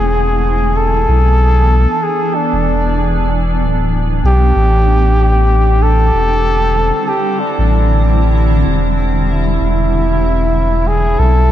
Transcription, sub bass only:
Already playing: E1
1.08 B1
2.53 E1
3.61 D1
4.24 B1
4.56 A1
6.14 E1
7.58 A1
8.66 E1
9.61 E1
11.19 B1

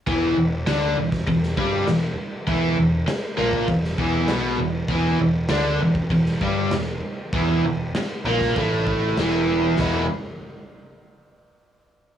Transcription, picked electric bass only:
0.07 E1
0.37 E1
0.67 D2
0.98 E1
1.27 E1
1.58 G1
1.87 E1
2.48 E1
2.78 E1
3.08 muted picked electric bass stroke
3.38 A#1
3.68 E1
3.98 E1
4.28 B1
4.58 E1
4.88 E1
5.20 E1
5.50 D2
5.81 E1
6.11 E1
6.41 G1
6.71 E1
7.33 E1
7.64 E1
7.95 muted picked electric bass stroke
8.25 A#1
8.56 A1
9.18 E1
9.79 E1

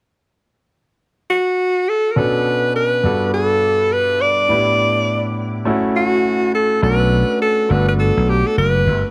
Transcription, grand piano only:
2.16 B2 C#4 D4 F#4 A4
3.03 G2 B3 D4 F#4 A4
4.49 A2 B3 D4 E4 G4
5.65 A3 C#4 E4 F#4
6.82 A3 C#4 D4 F#4
7.69 A3 B3 D4 F#4

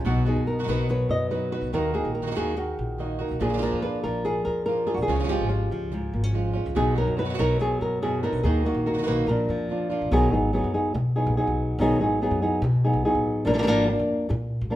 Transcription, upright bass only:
0.05 B1
0.36 F#2
0.68 B1
1.09 F#2
1.61 B1
1.73 D#2
2.05 A#1
2.37 D#2
2.79 A#1
3.31 B1
3.41 A#1
3.73 F2
4.04 A#1
4.46 F2
4.98 A#1
5.08 C#2
5.41 G#1
5.71 C#2
6.13 G#1
6.66 C#2
6.76 B1
7.07 F#2
7.39 B1
7.81 F#2
8.33 B1
8.43 D#2
8.74 A#1
9.06 B1
9.27 A#1
9.49 F2
10.02 A#1
10.12 B1
10.32 G#1
10.64 F#2
10.94 B2
11.26 B1
11.47 B1
11.79 B1
12.00 G#1
12.31 F#2
12.62 B2
12.93 B1
13.15 A1
13.47 A#1
13.68 G#1
13.99 F2
14.30 A#2
14.61 A#1

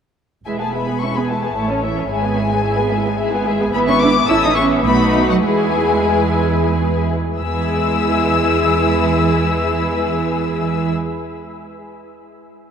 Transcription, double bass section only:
0.46 E1
1.57 A1
2.11 G#1
3.73 G#1
4.29 A1
4.86 B1
5.44 E2
7.40 E2

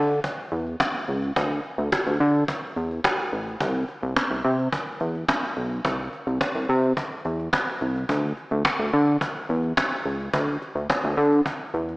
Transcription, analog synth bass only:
Already playing: D3
0.52 E2
1.08 C#2
1.36 D2
1.78 D2
2.06 D2
2.20 D3
2.76 E2
3.32 A1
3.61 C2
4.03 C2
4.30 C2
4.45 C3
5.01 E2
5.57 B1
5.85 C2
6.27 C2
6.55 C2
6.69 C3
7.25 E2
7.81 C2
8.09 D2
8.51 D2
8.79 D2
8.93 D3
9.49 E2
10.05 C#2
10.34 D2
10.75 D2
11.04 D2
11.17 D3
11.74 E2

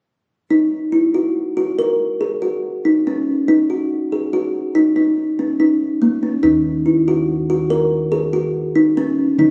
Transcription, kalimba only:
0.50 D#4
0.92 E4
1.14 F#4
1.57 F#4
1.79 A#4
2.21 G#4
2.42 F#4
2.85 D#4
3.07 C#4
3.48 D#4
3.70 F#4
4.12 G#4
4.33 F#4
4.75 D#4
4.96 D#4
5.39 C#4
5.60 D#4
6.02 A#3
6.23 C#4
6.43 D#4
6.86 E4
7.08 F#4
7.50 F#4
7.70 A#4
8.12 G#4
8.33 F#4
8.75 D#4
8.97 C#4
9.39 D#4

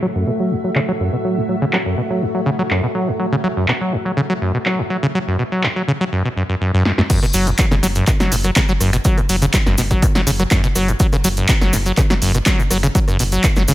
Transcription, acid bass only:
0.02 F#3
0.15 F#2
0.27 B2
0.40 F#3
0.51 E2
0.64 F#3
0.76 C#3
0.88 F#3
1.00 F#2
1.13 B2
1.24 F#3
1.37 E2
1.49 F#3
1.62 C#3
1.73 F#3
1.86 F#2
1.98 B2
2.10 F#3
2.22 E2
2.35 F#3
2.46 C#3
2.59 F#3
2.71 F#2
2.83 B2
2.95 F#3
3.08 E2
3.19 F#3
3.32 C#3
3.44 F#3
3.57 F#2
3.68 B2
3.81 F#3
3.92 E2
4.05 F#3
4.17 C#3
4.30 F#3
4.41 F#2
4.54 B2
4.66 F#3
4.79 E2
4.90 F#3
5.03 C#3
5.15 F#3
5.28 F#2
5.39 B2
5.52 F#3
5.64 E2
5.76 F#3
5.88 C#3
6.01 F#3
6.12 F#2
6.25 B2
6.37 F#2
6.49 F#2
6.61 F#2
6.74 F#2
6.85 F#2
6.98 F#2
7.10 F#2
7.22 B2
7.34 F#3
7.47 E2
7.59 F#3
7.71 C#3
7.83 F#3
7.96 F#2
8.07 B2
8.20 F#3
8.32 E2
8.44 F#3
8.56 C#3
8.69 F#3
8.80 F#2
8.93 B2
9.05 F#3
9.18 E2
9.29 F#3
9.42 C#3
9.53 F#3
9.66 F#2
9.78 B2
9.91 F#3
10.02 E2
10.15 F#3
10.27 C#3
10.39 F#3
10.51 F#2
10.64 B2
10.76 F#3
10.88 E2
11.00 F#3
11.13 C#3
11.24 F#3
11.37 F#2
11.49 B2
11.62 F#3
11.73 E2
11.86 F#3
11.98 C#3
12.10 F#3
12.22 F#2
12.35 B2
12.46 F#3
12.59 E2
12.71 F#3
12.84 C#3
12.95 F#3
13.08 F#2
13.19 B2
13.32 F#3
13.44 E2
13.57 F#3
13.68 C#3

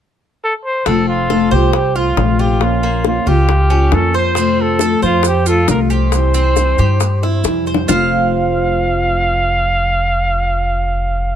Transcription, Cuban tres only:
0.86 C4
1.30 A4
1.51 C5
1.96 F4
2.39 F4
2.83 A#3
3.27 F4
3.70 C#4
4.14 C5
4.36 C4
4.81 A4
5.02 C5
5.46 F4
5.90 G4
6.34 C4
6.79 G4
7.23 E4
7.67 C5
7.88 F4 C5 F5

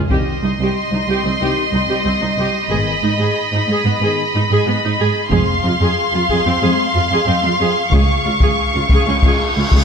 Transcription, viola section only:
0.10 G4
0.44 D#4
0.61 G4
0.94 D#4
1.10 G4
1.24 C4
1.41 G4
1.74 D#4
1.89 G4
2.05 C4
2.21 D#4
2.38 G4
2.70 G#4
3.03 D#4
3.19 G#4
3.55 D#4
3.71 G#4
3.86 B3
4.03 G#4
4.35 D#4
4.52 G#4
4.67 B3
4.85 D#4
5.00 G#4
5.31 G#4
5.65 F4
5.82 G#4
6.15 F4
6.30 G#4
6.47 C4
6.62 G#4
6.94 F4
7.12 G#4
7.27 C4
7.44 F4
7.60 G#4
7.94 G#4
8.25 F4
8.42 G#4
8.75 F4
8.93 G#4
9.08 C#4
9.25 G#4
9.58 F4
9.75 G#4

